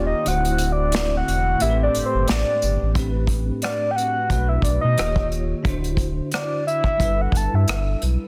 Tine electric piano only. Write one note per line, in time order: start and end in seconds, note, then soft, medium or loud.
0.00 0.25 D#3 medium
0.00 0.25 A#3 medium
0.00 0.26 F4 medium
0.00 0.26 G4 medium
0.00 0.30 C#5 medium
0.24 1.57 D3 medium
0.24 1.58 A3 medium
0.24 1.58 E4 medium
0.28 1.59 F#4 medium
0.28 1.60 C5 medium
1.58 2.91 A2 medium
1.58 2.92 A3 medium
1.58 2.93 C4 medium
1.58 2.93 G4 medium
1.63 1.69 A#4 medium
1.70 2.97 B4 medium
2.93 4.26 A2 medium
2.93 4.27 A3 medium
2.93 4.27 C4 medium
2.93 4.28 D4 medium
2.98 4.29 G4 medium
2.98 4.29 B4 medium
4.29 4.97 B2 medium
4.29 4.97 A3 soft
4.29 4.37 C4 soft
4.29 4.98 F#4 medium
4.29 4.98 B4 medium
4.37 5.01 D4 medium
4.97 5.65 D#3 medium
4.97 5.65 A#3 medium
4.97 5.65 F4 medium
4.97 5.66 G4 medium
4.97 5.06 C5 medium
5.06 5.69 C#5 medium
5.63 6.96 D3 medium
5.63 6.96 D4 medium
5.63 6.97 E4 medium
5.67 6.98 F#4 medium
5.67 6.99 C5 medium
6.97 8.28 G3 medium
6.97 8.28 D4 medium
6.97 8.28 E4 medium
7.02 8.28 A4 medium
7.02 8.28 B4 medium